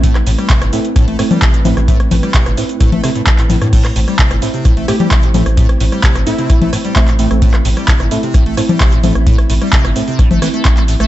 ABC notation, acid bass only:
X:1
M:4/4
L:1/16
Q:1/4=130
K:Am
V:1 name="Acid bass" clef=bass
A,, z A,, G, C, A,, A,, z A,, A, A,, G, C, A,, A,, C, | A,, z A,, G, C, A,, A,, z A,, A, C, A,, C, A,, A,, G,, | A,, z A,, G, C, A,, A,, C, A,, A, A,, G, C, A,, A,, z | A,, z A,, G, C, A,, A,, C, A,, A, A,, G, C, A,, A,, z |
A,, z A,, G, C, A,, A,, C, A,, A, A,, G, C, A,, A,, z | A,, z A,, G, C, A,, A,, C, A,, A, E, A, A,,, A, A,, A, |]